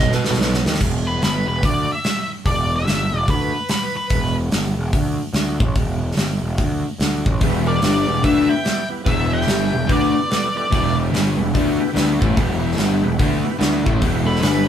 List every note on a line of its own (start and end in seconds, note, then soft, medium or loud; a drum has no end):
0.00 0.17 D#4 medium
0.00 0.17 F#4 medium
0.00 0.18 A4 medium
0.00 0.18 B4 medium
0.00 0.12 D#5 medium
0.10 0.21 B2 medium
0.10 snare medium
0.14 0.79 B4 loud
0.22 0.34 D#4 loud
0.22 0.35 F#4 medium
0.22 0.35 A4 medium
0.22 0.35 B4 loud
0.22 snare medium
0.31 0.37 B2 loud
0.31 snare medium
0.35 0.61 B1 medium
0.35 0.57 D#4 loud
0.35 0.57 F#4 loud
0.35 0.58 A4 medium
0.35 0.58 B4 loud
0.41 snare loud
0.54 snare medium
0.62 0.79 D#2 loud
0.62 0.75 D#4 medium
0.62 0.75 F#4 medium
0.62 0.76 A4 medium
0.62 0.76 B4 medium
0.62 snare loud
0.74 snare loud
0.81 1.19 E1 medium
0.81 kick loud
0.81 crash loud
1.07 1.21 B4 medium
1.22 1.46 G1 loud
1.22 1.46 B4 medium
1.22 snare loud
1.22 open hi-hat soft
1.48 1.61 E1 medium
1.48 1.63 B4 medium
1.63 1.87 D2 medium
1.63 1.90 D5 loud
1.63 kick loud
1.63 open hi-hat medium
1.92 2.29 E5 loud
2.04 snare loud
2.04 open hi-hat medium
2.45 2.83 E1 loud
2.45 2.72 D5 loud
2.45 kick medium
2.45 open hi-hat medium
2.76 3.19 E5 medium
2.86 3.10 G1 medium
2.86 snare loud
2.86 open hi-hat medium
3.12 3.27 E1 medium
3.19 3.32 D5 medium
3.28 3.52 D2 medium
3.28 3.70 B4 medium
3.28 kick medium
3.28 open hi-hat medium
3.69 3.96 B4 medium
3.69 snare loud
3.69 open hi-hat medium
3.97 4.34 B4 medium
4.10 4.49 E1 loud
4.10 kick loud
4.10 open hi-hat medium
4.51 4.75 G1 medium
4.51 snare loud
4.51 open hi-hat medium
4.77 4.92 E1 medium
4.93 5.17 D2 medium
4.93 kick medium
4.93 open hi-hat medium
5.33 5.58 D2 medium
5.33 snare loud
5.33 open hi-hat soft
5.60 5.74 A1 medium
5.60 kick loud
5.75 6.14 E1 medium
5.75 kick loud
5.75 open hi-hat medium
6.11 snare soft
6.15 6.40 G1 medium
6.15 snare loud
6.15 open hi-hat medium
6.42 6.57 E1 medium
6.58 6.82 D2 medium
6.58 kick medium
6.58 open hi-hat medium
6.99 7.23 D2 medium
6.99 snare loud
6.99 open hi-hat medium
7.26 7.40 A1 medium
7.26 kick loud
7.41 7.79 E1 medium
7.41 7.82 E2 medium
7.41 7.82 B2 loud
7.41 7.82 E3 medium
7.41 7.61 B3 loud
7.41 7.62 E4 loud
7.41 7.62 G4 loud
7.41 7.62 B4 loud
7.41 kick loud
7.41 open hi-hat medium
7.67 7.79 B3 medium
7.67 7.79 E4 medium
7.67 7.79 G4 medium
7.67 7.81 A#4 medium
7.67 7.80 B4 medium
7.67 7.83 D5 medium
7.81 8.06 G1 medium
7.81 8.06 G2 loud
7.81 8.07 D3 loud
7.81 8.08 G3 loud
7.81 8.02 B3 medium
7.81 8.03 E4 medium
7.81 8.02 G4 medium
7.81 8.21 B4 medium
7.81 8.03 B4 medium
7.81 8.24 D5 medium
7.81 snare loud
7.81 open hi-hat medium
8.07 8.22 E1 medium
8.07 8.20 E2 medium
8.07 8.20 B2 medium
8.07 8.19 B3 medium
8.07 8.20 E4 medium
8.07 8.20 G4 medium
8.07 8.20 B4 medium
8.22 8.48 D2 medium
8.22 8.48 D3 medium
8.22 8.49 A3 medium
8.22 8.43 B3 medium
8.22 8.49 D4 loud
8.22 8.44 E4 medium
8.22 8.44 G4 medium
8.22 8.48 B4 medium
8.22 8.44 B4 medium
8.22 8.51 E5 loud
8.22 kick medium
8.22 open hi-hat medium
8.48 8.61 B3 medium
8.48 8.61 E4 medium
8.48 8.61 G4 medium
8.48 8.62 B4 medium
8.48 8.88 E5 medium
8.48 8.87 G5 loud
8.62 8.84 B3 loud
8.62 8.84 E4 medium
8.62 8.84 G4 medium
8.62 8.84 D5 loud
8.62 snare loud
8.62 open hi-hat soft
8.89 9.02 B3 medium
8.89 9.02 E4 medium
8.89 9.02 G4 medium
8.89 9.02 B4 medium
9.04 9.44 E1 medium
9.04 9.46 E2 loud
9.04 9.47 B2 loud
9.04 9.47 E3 medium
9.04 9.25 B3 medium
9.04 9.25 E4 medium
9.04 9.25 G4 medium
9.04 9.30 B4 medium
9.04 9.26 B4 loud
9.04 9.31 E5 loud
9.04 kick loud
9.04 open hi-hat medium
9.30 9.43 B3 medium
9.30 9.43 E4 medium
9.30 9.43 G4 medium
9.30 9.43 B4 medium
9.30 9.85 E5 medium
9.34 9.91 G5 loud
9.41 snare soft
9.46 9.71 G1 loud
9.46 9.72 G2 loud
9.46 9.72 D3 loud
9.46 9.73 G3 loud
9.46 9.66 B3 medium
9.46 9.66 E4 medium
9.46 9.67 G4 medium
9.46 9.67 B4 medium
9.46 snare loud
9.46 open hi-hat soft
9.68 9.82 B3 medium
9.68 9.83 E4 medium
9.68 9.84 G4 medium
9.68 9.83 B4 medium
9.73 9.88 E1 medium
9.73 9.85 E2 medium
9.73 9.85 B2 medium
9.86 10.13 D2 medium
9.86 10.13 D3 medium
9.86 10.13 A3 medium
9.86 10.08 B3 medium
9.86 10.13 D4 loud
9.86 10.07 E4 medium
9.86 10.08 G4 medium
9.86 10.08 B4 medium
9.86 kick loud
9.86 open hi-hat medium
9.90 10.28 B4 medium
9.90 10.33 D5 medium
10.14 10.26 B3 medium
10.14 10.26 E4 medium
10.14 10.27 G4 medium
10.14 10.26 D5 loud
10.27 10.48 B3 loud
10.27 10.49 E4 medium
10.27 10.49 G4 medium
10.27 10.50 A4 loud
10.27 open hi-hat medium
10.31 10.55 B4 medium
10.31 10.56 D5 medium
10.31 snare loud
10.55 10.67 B3 medium
10.55 10.67 E4 medium
10.55 10.68 G4 medium
10.55 10.68 A4 medium
10.55 10.95 B4 medium
10.55 10.95 D5 medium
10.69 11.10 E1 medium
10.69 11.12 E2 loud
10.69 11.12 B2 loud
10.69 11.12 E3 loud
10.69 10.90 B3 loud
10.69 10.91 E4 medium
10.69 10.91 G4 medium
10.69 10.91 D5 loud
10.69 kick loud
10.69 open hi-hat medium
10.94 11.06 B3 medium
10.94 11.06 E4 medium
10.94 11.07 G4 medium
10.94 11.08 D5 medium
11.07 11.30 B3 medium
11.07 11.30 E4 medium
11.07 11.30 G4 medium
11.07 11.31 B4 medium
11.12 11.36 G1 loud
11.12 11.37 G2 loud
11.12 11.37 D3 medium
11.12 11.38 G3 loud
11.12 snare loud
11.12 open hi-hat medium
11.34 11.52 E1 medium
11.34 11.48 B3 medium
11.34 11.49 E4 medium
11.34 11.49 G4 medium
11.34 11.49 B4 loud
11.39 11.51 E2 medium
11.39 11.51 B2 medium
11.52 11.78 D2 medium
11.52 11.79 D3 loud
11.52 11.79 A3 medium
11.52 11.73 B3 medium
11.52 11.79 D4 loud
11.52 11.73 E4 medium
11.52 11.73 G4 medium
11.52 11.74 B4 loud
11.52 kick medium
11.52 open hi-hat medium
11.77 11.90 B3 loud
11.77 11.90 E4 loud
11.77 11.91 G4 loud
11.77 11.91 B4 loud
11.92 12.19 D2 medium
11.92 12.19 D3 medium
11.92 12.20 A3 medium
11.92 12.14 B3 loud
11.92 12.20 D4 medium
11.92 12.14 E4 loud
11.92 12.14 G4 loud
11.92 12.14 B4 loud
11.92 open hi-hat medium
11.97 snare loud
12.18 12.36 A1 loud
12.18 12.35 A2 medium
12.18 12.35 E3 medium
12.18 12.36 A3 medium
12.18 12.31 B3 medium
12.18 12.31 E4 medium
12.18 12.32 G4 medium
12.18 12.33 B4 loud
12.22 kick loud
12.32 12.55 B3 loud
12.32 12.54 E4 loud
12.32 12.55 G4 loud
12.32 12.56 B4 loud
12.36 12.75 E1 loud
12.36 12.77 E2 medium
12.36 12.78 B2 loud
12.36 12.78 E3 loud
12.36 kick loud
12.36 open hi-hat medium
12.57 12.72 B3 medium
12.57 12.72 E4 medium
12.57 12.72 G4 medium
12.57 12.73 B4 medium
12.71 12.96 B3 medium
12.71 12.96 E4 medium
12.71 12.96 G4 medium
12.71 snare soft
12.77 13.01 G1 medium
12.77 13.03 G2 loud
12.77 13.03 D3 medium
12.77 13.04 G3 loud
12.77 12.97 B4 medium
12.77 snare loud
12.77 open hi-hat medium
13.02 13.18 E1 medium
13.02 13.16 E2 medium
13.02 13.16 B2 medium
13.02 13.15 B3 medium
13.02 13.15 E4 medium
13.02 13.15 G4 medium
13.02 13.16 B4 loud
13.18 13.43 D2 medium
13.18 13.44 D3 medium
13.18 13.44 A3 loud
13.18 13.38 B3 medium
13.18 13.44 D4 medium
13.18 13.38 E4 medium
13.18 13.38 G4 medium
13.18 13.38 B4 medium
13.18 kick loud
13.18 open hi-hat medium
13.43 13.56 B3 loud
13.43 13.57 E4 medium
13.43 13.57 G4 medium
13.43 13.58 B4 loud
13.59 13.85 D2 medium
13.59 13.84 D3 medium
13.59 13.85 A3 medium
13.59 13.79 B3 loud
13.59 13.85 D4 medium
13.59 13.80 E4 loud
13.59 13.80 G4 loud
13.59 13.80 B4 loud
13.59 snare loud
13.59 open hi-hat medium
13.84 14.00 A1 medium
13.84 14.00 A2 medium
13.84 14.01 E3 medium
13.84 14.01 A3 medium
13.84 13.98 B3 medium
13.84 13.98 E4 medium
13.84 13.98 G4 medium
13.84 13.99 B4 medium
13.84 kick loud
14.00 14.40 E1 medium
14.00 14.41 E2 medium
14.00 14.42 B2 medium
14.00 14.42 E3 loud
14.00 14.21 B3 loud
14.00 14.21 E4 loud
14.00 14.21 G4 loud
14.00 14.21 B4 loud
14.00 kick loud
14.00 open hi-hat medium
14.25 14.38 B3 medium
14.25 14.39 E4 medium
14.25 14.39 G4 medium
14.25 14.41 A4 medium
14.25 14.40 B4 medium
14.25 14.39 D5 medium
14.35 snare soft
14.40 14.67 G1 medium
14.40 14.67 G2 loud
14.40 14.67 D3 medium
14.40 14.68 G3 loud
14.40 14.62 B3 medium
14.40 14.62 E4 medium
14.40 14.63 G4 medium
14.40 14.67 G4 medium
14.40 14.66 B4 medium
14.40 14.63 B4 medium
14.40 snare loud
14.40 open hi-hat medium